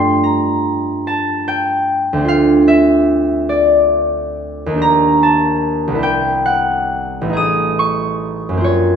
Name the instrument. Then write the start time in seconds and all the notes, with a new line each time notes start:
harp
Already playing: G2 G3 A3 A#3 D4 F4 F5 G5 C6
0.24 A#5
1.07 A5
1.48 G5
2.13 D2
2.17 C4 D4
2.25 F4 F5
2.68 E5
3.49 D5
4.66 D#2 A#3
4.74 D4 G4
4.82 A#5
5.23 A5
5.88 C2 B3
5.95 E4 G4
6.03 G5
6.46 F#5
7.21 A1 A3
7.29 D#4 G#4
7.37 D#6
7.79 C#6
8.49 F#2
8.53 A#3
8.57 C4 F4
8.64 C#5